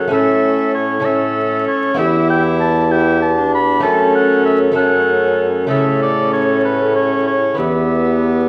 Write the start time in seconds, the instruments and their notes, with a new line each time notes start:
Already playing: oboe F#5
0.08 bassoon A2, lute A3 C#4 A4, viola C#4, recorder A4
0.12 lute A2, oboe E5
0.74 oboe C#5
1.00 lute A3 C#4 A4, viola C#4, recorder A4
1.05 oboe E5
1.67 oboe C#5
1.94 bassoon E2, lute E2 B3 E4 G4, viola E4, recorder G#4, oboe E5
2.02 recorder G4
2.30 oboe G5
2.60 oboe A5
2.90 viola E4, recorder G4, oboe G5
3.22 oboe A5
3.38 viola D4
3.54 oboe B5
3.80 bassoon F#2, lute F#2 A3 C#4 A4, viola C#4, recorder A4, oboe A5
4.15 oboe F#5
4.45 oboe E5
4.72 lute A3 C#4 A4
4.77 viola C#4, recorder A4, oboe F#5
5.67 bassoon A2, lute A2 C#3 A3 A4, recorder A4, oboe E5
5.71 viola C#4
6.02 oboe D5
6.33 oboe C#5
6.65 oboe B4
6.96 oboe C#5
7.27 oboe C#5
7.55 lute E2 B3 B4, viola B3, oboe E5
7.59 bassoon E2, recorder G4